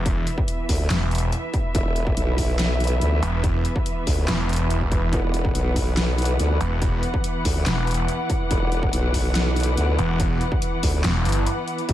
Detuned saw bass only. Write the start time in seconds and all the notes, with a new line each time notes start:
Already playing: E1
0.90 E1
3.23 E1
4.28 E1
6.61 E1
7.66 E1
9.99 E1
11.04 E1
11.25 G1